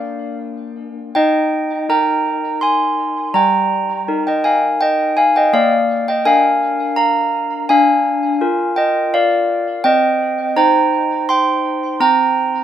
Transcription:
0.00 1.08 A#3 medium
0.00 1.09 D4 soft
0.00 1.09 A#4 soft
0.00 0.35 D5 medium
0.00 0.35 F5 medium
1.15 1.87 D#4 medium
1.15 1.85 D#5 medium
1.15 1.86 G5 loud
1.89 3.31 D#4 medium
1.89 3.31 A#4 medium
1.89 2.58 G5 medium
1.89 2.59 A#5 medium
2.61 3.31 G#5 medium
2.61 3.31 C6 loud
3.34 4.05 G3 medium
3.34 4.23 G5 medium
3.34 4.22 A#5 loud
4.08 5.49 D#4 soft
4.08 5.49 A#4 medium
4.27 4.44 D#5 medium
4.27 4.45 G5 medium
4.44 4.79 F5 medium
4.44 4.79 G#5 medium
4.81 5.15 D#5 medium
4.81 5.15 G5 loud
5.17 5.34 F5 medium
5.17 5.35 G#5 medium
5.36 5.53 D#5 medium
5.36 5.54 G5 medium
5.53 6.23 A#3 medium
5.53 6.04 D5 medium
5.53 6.05 F5 loud
6.08 6.25 D#5 medium
6.08 6.26 G5 medium
6.25 7.66 D4 medium
6.25 7.65 A#4 medium
6.25 6.94 F5 medium
6.25 6.95 G#5 loud
6.96 7.65 F5 medium
6.96 7.66 A#5 medium
7.69 8.39 D4 medium
7.69 8.73 F5 medium
7.69 8.72 G#5 loud
8.41 9.80 F4 medium
8.41 9.80 A#4 medium
8.76 9.11 D#5 medium
8.76 9.11 G5 medium
9.14 9.81 D5 medium
9.14 9.82 F5 loud
9.84 10.54 C4 medium
9.84 10.53 D#5 medium
9.84 10.53 G5 loud
10.56 11.97 D#4 medium
10.56 11.97 C5 medium
10.56 11.25 G5 medium
10.56 11.26 A#5 loud
11.29 11.97 G5 medium
11.29 11.98 C6 loud
12.00 12.64 C4 medium
12.00 12.64 G5 medium
12.00 12.64 A#5 loud

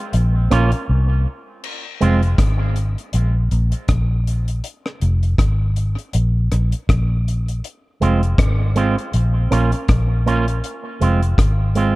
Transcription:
0.13 0.50 A#1 loud
0.13 closed hi-hat medium
0.51 0.72 A#1 medium
0.51 0.70 A#3 medium
0.51 0.70 C#4 medium
0.51 0.71 F4 loud
0.51 cross-stick medium
0.51 closed hi-hat medium
0.72 muted clean electric guitar stroke soft
0.72 closed hi-hat medium
0.89 1.25 C2 loud
1.64 crash medium
2.01 2.37 F1 medium
2.01 2.20 G#3 medium
2.01 2.20 C4 medium
2.01 2.21 F4 medium
2.01 closed hi-hat medium
2.23 closed hi-hat soft
2.38 2.95 G#1 medium
2.38 kick loud
2.38 cross-stick loud
2.38 closed hi-hat loud
2.76 closed hi-hat medium
2.98 closed hi-hat soft
3.13 3.50 A#1 medium
3.13 closed hi-hat medium
3.51 3.72 A#1 medium
3.51 closed hi-hat medium
3.72 closed hi-hat medium
3.88 4.60 A#1 medium
3.88 kick loud
3.88 cross-stick loud
3.88 closed hi-hat medium
4.27 closed hi-hat medium
4.48 closed hi-hat medium
4.64 closed hi-hat medium
4.86 cross-stick medium
5.01 5.37 F1 medium
5.01 closed hi-hat medium
5.23 closed hi-hat soft
5.38 5.95 G#1 medium
5.38 kick loud
5.38 cross-stick loud
5.38 closed hi-hat medium
5.76 closed hi-hat medium
5.99 closed hi-hat soft
6.13 6.50 A#1 medium
6.13 closed hi-hat loud
6.52 6.72 A#1 medium
6.52 cross-stick medium
6.52 closed hi-hat medium
6.72 closed hi-hat medium
6.89 7.60 A#1 medium
6.89 kick loud
6.89 cross-stick loud
6.89 closed hi-hat medium
7.28 closed hi-hat medium
7.48 closed hi-hat medium
7.64 closed hi-hat medium
8.01 8.37 F1 medium
8.01 8.20 G#3 medium
8.01 8.20 C4 medium
8.01 8.21 F4 medium
8.01 closed hi-hat medium
8.23 closed hi-hat soft
8.38 8.95 G#1 medium
8.38 kick loud
8.38 cross-stick loud
8.38 closed hi-hat medium
8.76 8.95 G#3 medium
8.76 8.95 C4 loud
8.76 8.96 F4 loud
8.76 closed hi-hat medium
8.98 muted clean electric guitar stroke soft
8.98 closed hi-hat soft
9.13 9.49 A#1 medium
9.13 closed hi-hat medium
9.51 9.72 A#1 medium
9.51 9.70 A#3 medium
9.51 9.70 C#4 medium
9.51 9.71 F4 medium
9.51 cross-stick medium
9.51 closed hi-hat medium
9.72 muted clean electric guitar stroke soft
9.72 closed hi-hat medium
9.88 10.60 A#1 medium
9.88 kick loud
9.88 cross-stick loud
9.88 closed hi-hat medium
10.26 10.45 A#3 medium
10.26 10.45 C#4 medium
10.26 10.46 F4 medium
10.26 closed hi-hat medium
10.48 closed hi-hat medium
10.64 closed hi-hat medium
11.01 11.37 F1 medium
11.01 11.20 G#3 medium
11.01 11.20 C4 medium
11.01 11.20 F4 medium
11.01 closed hi-hat medium
11.23 closed hi-hat soft
11.38 11.95 G#1 medium
11.38 kick loud
11.38 cross-stick loud
11.38 closed hi-hat medium
11.75 11.94 G#3 medium
11.75 11.95 C4 medium
11.75 11.95 F4 loud
11.75 closed hi-hat medium

